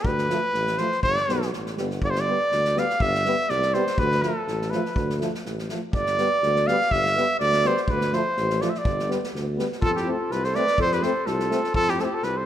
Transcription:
0.04 D2 B4, kick
0.18 snare
0.29 F3 A3, snare
0.54 A1, snare
0.67 snare
0.78 F3 A3 C5, snare
0.92 snare
1.03 G1 D5, kick
1.17 snare
1.27 B1 G3 B3, snare
1.42 snare
1.53 A1, snare
1.66 snare
1.77 G1 G3 B3, snare
1.91 snare
2.02 G1 D5, kick
2.10 C5
2.15 snare
2.20 D5
2.27 G3 B3
2.52 D2, snare
2.65 snare
2.75 G3 B3 F5, snare
2.90 snare
3.00 G1 E5, kick
3.14 snare
3.24 G3 B3, snare
3.49 C2 D5, snare
3.62 snare
3.74 G3 B3 C5, snare
3.87 snare
3.98 D2 B4, kick
4.12 snare
4.22 F3 A3 A4, snare
4.48 A1, snare
4.62 snare
4.70 F3 A3 B4, snare
4.85 snare
4.95 D2, kick
5.10 snare
5.21 F3 A3, snare
5.35 snare
5.45 A1, snare
5.59 snare
5.69 F3 A3, snare
5.93 G1 D5, kick
6.06 snare
6.18 G3 B3, snare
6.42 D2, snare
6.56 snare
6.67 G3 B3 F5, snare
6.81 snare
6.91 G1 E5, kick
7.06 snare
7.16 G3 B3, snare
7.40 D2 D5, snare
7.52 snare
7.64 G3 B3 C5, snare
7.77 snare
7.83 C5
7.88 D2 B4, kick
8.01 snare
8.13 F3 A3 C5, snare
8.37 A1, snare
8.50 snare
8.61 F3 A3 D5, snare
8.69 E5
8.74 D5, snare
8.85 G1, kick
8.99 snare
9.09 G3 B3, snare
9.24 snare
9.34 D2, snare
9.57 G3 B3, snare
9.72 snare
9.82 F2 F4 A4, kick
9.93 E4 F4 G4 A4, snare
10.06 A3 C4 F4 A4
10.31 C2 F4 B4, snare
10.44 A4 C5, snare
10.55 A3 C4 B4 D5, snare
10.67 snare
10.78 F2 A4 C5, kick
10.92 G4 B4, snare
11.02 A3 C4 A4 C5, snare
11.26 C2 F4 A4, snare
11.40 snare
11.49 A3 C4, snare
11.64 snare
11.74 F2 F4 A4, kick
11.88 E4 G4, snare
11.98 A3 C4 F4 A4, snare
12.04 E4 G4
12.13 F4 A4
12.23 C2 F4 B4, snare
12.37 A4 C5

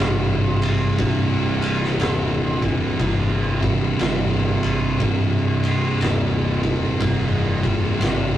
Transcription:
Already playing: C2 G2 C3
0.00 G#1 G2 C3, snare
0.62 ride
0.97 C1 C2 G2 C3, kick, ride
1.61 C1, ride
1.83 snare
1.99 D#1, snare, ride
2.62 kick, ride
2.99 G1 C2 G2 C3, kick, ride
3.60 C2 G2 C3, kick, ride
3.98 G1 C2 G2 C3, snare, ride
4.62 G#1, ride
4.98 C1 C2 G2 C3, kick, ride
5.64 ride
6.00 D#1, snare, ride
6.63 kick, ride
6.99 F1 C2 G2 C3, kick, ride
7.61 C2 G2 C3, kick, ride
7.99 G#1 C2 G2 C3, ride
8.03 snare

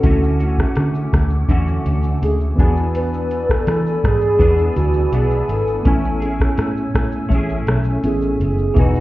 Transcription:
Already playing: A4 F#5
0.01 D2 D3 A3 C#4 E4 F#4 D6, kick, closed hi-hat, shaker
0.05 A3 C#4 F#4
0.23 shaker
0.39 C#4 F#4, closed hi-hat, shaker
0.43 A3
0.58 kick, cross-stick, shaker
0.75 D3, cross-stick, closed hi-hat, shaker
0.95 shaker
1.13 D2, kick, cross-stick, closed hi-hat, shaker
1.30 shaker
1.48 E2 D3 A3 C#4 F#4, kick, closed hi-hat, shaker
1.68 shaker
1.85 D2, closed hi-hat, shaker
2.03 shaker
2.22 D2 G#4, closed hi-hat, shaker
2.40 shaker
2.56 E2 B3 D4 F#4 G#4 D5 G#5 B5 E6, kick, closed hi-hat, shaker
2.61 E3 B3 G#5
2.77 shaker
2.95 B4, closed hi-hat, shaker
3.14 shaker
3.31 closed hi-hat, shaker
3.49 A4, kick, cross-stick, shaker
3.67 E3, cross-stick, closed hi-hat, shaker
3.86 shaker
4.03 G#2 G#4, kick, cross-stick, closed hi-hat, shaker
4.21 shaker
4.39 E2 E3 B3 D4 G#4, kick, closed hi-hat, shaker
4.58 shaker
4.76 D2 F#4, closed hi-hat, shaker
4.94 shaker
5.12 B1 E3 B3 D4 G#4, closed hi-hat, shaker
5.30 shaker
5.49 G#1 A4, closed hi-hat, shaker
5.67 shaker
5.83 A1 A3 B3 C#4 E4 C#5 E5, kick, closed hi-hat, shaker
5.88 G#5
6.05 shaker
6.20 E4 G#4, closed hi-hat, shaker
6.24 C#4
6.40 kick, cross-stick, shaker
6.57 A2, cross-stick, closed hi-hat, shaker
6.77 shaker
6.95 A2, kick, cross-stick, closed hi-hat, shaker
7.12 shaker
7.29 A1 A3 C#4, kick, closed hi-hat, shaker
7.33 E4 G#4
7.50 shaker
7.67 B1, cross-stick, closed hi-hat, shaker
7.84 shaker
8.03 A1 B3 C#4 E4 G#4, closed hi-hat, shaker
8.22 shaker
8.40 F#1 G#4, closed hi-hat, shaker
8.58 shaker
8.74 E1 E3 B3 D#4 F#4 F#5 G#5 E6, kick, closed hi-hat, shaker
8.78 D#4 F#4 B4 G#5
8.95 shaker

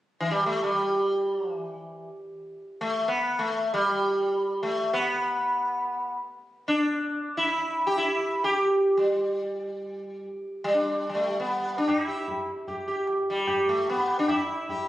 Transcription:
0.20 E3
0.31 G3
0.46 A3
0.64 G3
1.35 F#3
1.58 E3
2.81 A3
3.08 B3
3.39 A3
3.74 G3
4.63 A3
4.93 B3
6.68 D4
7.37 E4
7.87 G4
7.98 E4
8.44 G4
8.97 G3
10.64 G3
10.74 D4
11.09 G3
11.15 A3
11.40 B3
11.78 D4
11.88 E4, tabla na, tabla ge
12.08 G4
12.28 tabla tin, tabla ge
12.68 G4, tabla tin, tabla ge
12.88 G4
13.07 tabla na
13.30 G3
13.47 G4, tabla na, tabla ge
13.68 A3, tabla ge
13.87 B3, tabla tin, tabla ge
14.07 tabla na
14.19 D4
14.28 E4, tabla na, tabla ge
14.69 G4, tabla tin, tabla ge

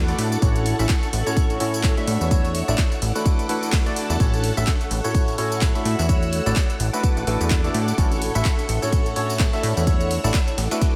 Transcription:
Already playing: E2 A4 F#5 D6
0.08 A3 D4 E4 F#4 A4 D5, snare, closed hi-hat, tambourine
0.18 A2, snare, closed hi-hat, open hi-hat
0.32 snare, closed hi-hat, tambourine
0.42 A1 A2 C#4 E4 F#4 A4 C#5 C#6, kick, closed hi-hat, tambourine
0.56 closed hi-hat, tambourine
0.66 closed hi-hat, open hi-hat
0.79 A1 A2 C#4 E4 F#4 A4 E5, snare, closed hi-hat, tambourine
0.89 kick, snare, clap, closed hi-hat, tambourine
1.03 closed hi-hat, tambourine
1.13 A1, closed hi-hat, open hi-hat
1.27 A2 C#4 E4 F#4 A4 C#5, closed hi-hat, tambourine
1.37 kick, closed hi-hat, tambourine
1.50 closed hi-hat, tambourine
1.60 A2 C#4 E4 F#4 A4 C#5, closed hi-hat, open hi-hat
1.74 closed hi-hat, tambourine
1.83 kick, snare, clap, closed hi-hat, tambourine
1.97 A3 D4 E4 F#4 A4 E5, snare, closed hi-hat, tambourine
2.07 A2 E4 C#5 F#5 E6, snare, closed hi-hat, open hi-hat
2.21 E2, snare, closed hi-hat, tambourine
2.31 A3 D4 E4 F#4 A4 C#5, kick, closed hi-hat, tambourine
2.45 closed hi-hat, tambourine
2.55 closed hi-hat, open hi-hat
2.68 A1 A3 D4 E4 F#4 A4 D5, snare, closed hi-hat, tambourine
2.78 kick, snare, clap, closed hi-hat, tambourine
2.92 closed hi-hat, tambourine
3.02 A1 A4 D6, closed hi-hat, open hi-hat
3.15 A3 D4 E4 F#4 A4 B4, closed hi-hat, tambourine
3.26 kick, closed hi-hat, tambourine
3.38 A4, closed hi-hat, tambourine
3.49 A3 D4 E4 F#4 A4 B4, closed hi-hat, open hi-hat
3.63 closed hi-hat, tambourine
3.72 kick, snare, clap, closed hi-hat, open hi-hat, tambourine
3.86 A3 D4 E4 F#4 A4 D5, closed hi-hat, tambourine
3.96 snare, closed hi-hat, open hi-hat
4.10 E2, snare, closed hi-hat, tambourine
4.20 A1 A2 C#4 E4 F#4 A4 C#5 C#6, kick, closed hi-hat, tambourine
4.34 closed hi-hat, tambourine
4.44 closed hi-hat, open hi-hat
4.57 A1 A2 C#4 E4 F#4 A4 E5, snare, closed hi-hat, tambourine
4.67 kick, snare, clap, closed hi-hat, tambourine
4.81 closed hi-hat, tambourine
4.91 A1, closed hi-hat, open hi-hat
5.04 A2 C#4 E4 F#4 A4 C#5, closed hi-hat, tambourine
5.15 kick, closed hi-hat, tambourine
5.28 closed hi-hat, tambourine
5.38 A2 C#4 E4 F#4 A4 C#5, closed hi-hat, open hi-hat
5.52 closed hi-hat, tambourine
5.61 kick, snare, clap, closed hi-hat, tambourine
5.75 A3 D4 E4 F#4 A4 E5, snare, closed hi-hat, tambourine
5.85 A2 E4 C#5 E6, snare, closed hi-hat, open hi-hat
5.99 E2, snare, closed hi-hat, tambourine
6.09 A3 D4 E4 F#4 A4 C#5, kick, closed hi-hat, tambourine
6.23 closed hi-hat, tambourine
6.33 closed hi-hat, open hi-hat
6.46 A1 A3 D4 E4 F#4 A4 D5, snare, closed hi-hat, tambourine
6.56 kick, snare, clap, closed hi-hat, tambourine
6.70 closed hi-hat, tambourine
6.80 A1 A4 D6, closed hi-hat, open hi-hat
6.93 A3 D4 E4 F#4 A4 B4, closed hi-hat, tambourine
7.03 kick, closed hi-hat, tambourine
7.17 A1 A4, closed hi-hat, tambourine
7.27 A1 A3 D4 E4 F#4 A4 B4, closed hi-hat, open hi-hat
7.41 E2, closed hi-hat, tambourine
7.50 kick, clap, closed hi-hat, tambourine
7.64 A3 D4 E4 F#4 A4 D5, snare, closed hi-hat, tambourine
7.74 A2, snare, closed hi-hat, open hi-hat
7.88 snare, closed hi-hat, tambourine
7.98 A1 A2 C#4 E4 F#4 A4 C#5 C#6, kick, closed hi-hat, tambourine
8.12 closed hi-hat, tambourine
8.22 closed hi-hat, open hi-hat
8.35 A1 A2 C#4 E4 F#4 A4 E5, snare, closed hi-hat, tambourine
8.45 kick, snare, clap, closed hi-hat, tambourine
8.59 closed hi-hat, tambourine
8.69 A1, closed hi-hat, open hi-hat
8.82 A2 C#4 E4 F#4 A4 C#5, closed hi-hat, tambourine
8.93 kick, closed hi-hat, tambourine
9.06 closed hi-hat, tambourine
9.16 A2 C#4 E4 F#4 A4 C#5, closed hi-hat, open hi-hat
9.30 closed hi-hat, tambourine
9.39 kick, snare, clap, closed hi-hat, tambourine
9.53 A3 D4 E4 F#4 A4 E5, snare, closed hi-hat, tambourine
9.63 A2 E4 C#5 E6, snare, closed hi-hat, open hi-hat
9.77 E2, snare, closed hi-hat, tambourine
9.87 A3 D4 E4 F#4 A4 C#5, kick, closed hi-hat, tambourine
10.01 closed hi-hat, tambourine
10.11 closed hi-hat, open hi-hat
10.24 A1 A3 D4 E4 F#4 A4 D5, snare, closed hi-hat, tambourine
10.34 kick, snare, clap, closed hi-hat, tambourine
10.48 closed hi-hat, tambourine
10.58 A1 A4 D6, snare, closed hi-hat, open hi-hat
10.71 A3 D4 E4 F#4 A4 B4, snare, closed hi-hat, tambourine
10.81 kick, snare, closed hi-hat, tambourine

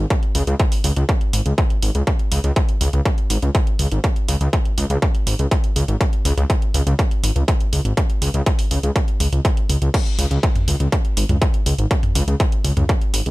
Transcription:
0.10 kick, closed hi-hat
0.23 closed hi-hat
0.35 C#2, open hi-hat
0.47 C#2, closed hi-hat
0.59 kick, closed hi-hat
0.72 open hi-hat
0.84 C#2, open hi-hat
0.96 C#2, closed hi-hat
1.09 kick, closed hi-hat
1.21 closed hi-hat
1.33 G#1, open hi-hat
1.46 C#2, closed hi-hat
1.58 kick, closed hi-hat
1.70 closed hi-hat
1.82 G#1, open hi-hat
1.95 C#2, closed hi-hat
2.07 kick, closed hi-hat
2.19 closed hi-hat
2.32 C#2, open hi-hat
2.44 C#2, closed hi-hat
2.56 kick, closed hi-hat
2.69 closed hi-hat
2.81 C#2, open hi-hat
2.93 C#2, closed hi-hat
3.05 kick, closed hi-hat
3.18 closed hi-hat
3.30 G#1, open hi-hat
3.42 C#2, closed hi-hat
3.55 kick, closed hi-hat
3.67 closed hi-hat
3.79 C#2, open hi-hat
3.92 G#1, closed hi-hat
4.04 kick, closed hi-hat
4.16 closed hi-hat
4.28 C#2, open hi-hat
4.41 C#2, closed hi-hat
4.53 kick, closed hi-hat
4.65 closed hi-hat
4.78 C#2, open hi-hat
4.90 C#2, closed hi-hat
5.02 kick, closed hi-hat
5.15 closed hi-hat
5.27 G#1, open hi-hat
5.39 C#2, closed hi-hat
5.51 kick, closed hi-hat
5.64 closed hi-hat
5.76 C#2, open hi-hat
5.88 G#1, closed hi-hat
6.01 kick, closed hi-hat
6.13 closed hi-hat
6.25 C#2, open hi-hat
6.37 C#2, closed hi-hat
6.50 kick, closed hi-hat
6.62 closed hi-hat
6.74 C#2, open hi-hat
6.87 C#2, closed hi-hat
6.99 kick, closed hi-hat
7.11 closed hi-hat
7.23 G#1, open hi-hat
7.36 C#2, closed hi-hat
7.48 kick, closed hi-hat
7.61 closed hi-hat
7.73 C#2, open hi-hat
7.85 G#1, closed hi-hat
7.97 kick, closed hi-hat
8.10 closed hi-hat
8.22 C#2, open hi-hat
8.34 C#2, closed hi-hat
8.46 kick, closed hi-hat
8.59 open hi-hat
8.71 C#2, open hi-hat
8.83 C#2, closed hi-hat
8.96 kick, closed hi-hat
9.08 closed hi-hat
9.20 C#2, open hi-hat
9.33 C#2, closed hi-hat
9.45 kick, closed hi-hat
9.57 closed hi-hat
9.69 C#2, open hi-hat
9.82 C#2, closed hi-hat
9.94 kick, closed hi-hat, crash
10.06 closed hi-hat
10.19 C#2, open hi-hat
10.31 C#2, closed hi-hat
10.43 kick, closed hi-hat
10.56 closed hi-hat, mid tom
10.68 C#2, open hi-hat
10.80 C#2, closed hi-hat
10.92 kick, closed hi-hat
11.05 closed hi-hat
11.17 G#1, open hi-hat
11.29 C#2, closed hi-hat, mid tom
11.42 kick, closed hi-hat
11.54 closed hi-hat
11.66 C#2, open hi-hat
11.78 G#1, closed hi-hat
11.91 kick, closed hi-hat
12.03 closed hi-hat, mid tom
12.15 C#2, open hi-hat
12.28 C#2, closed hi-hat
12.40 kick, closed hi-hat
12.52 closed hi-hat
12.64 C#2, open hi-hat
12.77 C#2, closed hi-hat, mid tom
12.89 kick, closed hi-hat
13.01 closed hi-hat
13.14 G#1, open hi-hat
13.26 C#2, closed hi-hat

